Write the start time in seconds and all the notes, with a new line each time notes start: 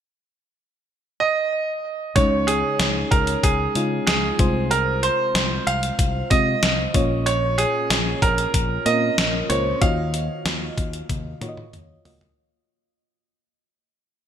1.20 D#5
2.16 C#2 C#3 G#3 C#4 D#4 C#5, kick, closed hi-hat
2.47 G#4, closed hi-hat
2.79 C#2, snare, closed hi-hat
3.11 C#2 A#4, kick, closed hi-hat
3.27 closed hi-hat
3.43 C#2 G#4, kick, closed hi-hat
3.75 C#3 G#3 C#4 D#4 F4, closed hi-hat
4.07 C#2 G#4, snare, closed hi-hat
4.39 C2 C3 G#3 C4 F4 C5, kick, closed hi-hat
4.71 A#4, closed hi-hat
5.03 C5, closed hi-hat
5.35 C2, snare, closed hi-hat
5.67 C2 F5, closed hi-hat
5.83 closed hi-hat
5.99 C2, kick, closed hi-hat
6.30 C3 G#3 C4 F4 D#5, kick, closed hi-hat
6.63 C2, snare, closed hi-hat
6.94 A#1 A#2 A#3 C#4 F4 C#5, kick, closed hi-hat
7.26 C#5, closed hi-hat
7.58 G#4, closed hi-hat
7.90 A#1, snare, closed hi-hat
8.22 A#1 A#4, kick, closed hi-hat
8.38 closed hi-hat
8.54 A#1, kick, closed hi-hat
8.85 A#2 A#3 C4 F4 A#4 D#5, closed hi-hat
8.92 C#4
9.18 A#1, snare, closed hi-hat
9.49 C#2 A#3 C#4 F4 C5 C#5, closed hi-hat
9.81 D#2 D#3 A#3 F4 F#4 D#5 F5, kick, closed hi-hat
10.14 closed hi-hat
10.46 D#2, snare, closed hi-hat
10.78 D#2, kick, closed hi-hat
10.93 closed hi-hat
11.09 D#2, kick, closed hi-hat, high tom
11.41 D#3 A#3 F4 F#4 C#5, closed hi-hat, mid tom
11.49 D#5
11.57 mid tom
11.73 D#2, closed hi-hat, mid tom
12.05 C#2 A#3 F4 F#4 D#5, floor tom, open hi-hat
12.21 floor tom